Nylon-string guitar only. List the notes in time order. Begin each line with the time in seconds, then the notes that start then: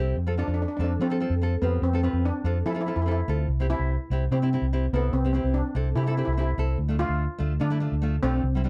Already playing: C4 E4 G4
0.27 C4 F4 A4
0.37 C4 F4 A4
0.80 C4 F4 A4
1.00 C4 F4 A4
1.10 C4 F4 A4
1.20 C4 F4 A4
1.41 C4 F4 A4
1.62 C4 F4 G4
1.93 C4 F4 A4
2.03 C4 F4 B4
2.45 C4 F4 A4
2.66 C4 F4 A4
2.75 C4 F4 A4
2.86 C4 F4 A4
3.06 C4 F4 A4
3.28 C4 F4 A4
3.60 C4 E4 G4
3.70 C4 E4 G4
4.11 C4 E4 G4
4.32 C4 E4 G4
4.42 C4 E4 G4
4.53 C4 E4 G4
4.73 C4 E4 G4
4.94 C4 E4 A4
5.24 C4 E4 G4
5.34 C4 E4 G4
5.75 C4 E4 A4
5.96 C4 E4 G4
6.06 C4 E4 A4
6.17 C4 E4 G4
6.37 C4 E4 G4
6.58 C4 E4 A4
6.88 A3 D4 F4
6.99 A3 D4 F4
7.38 A3 D4 F4
7.60 A3 D4 F4
7.70 A3 D4 E4
7.80 A3 D4 F4
8.02 A3 D4 F4
8.23 A3 D4 F4
8.55 G3 C4 E4
8.64 G3 C4 D4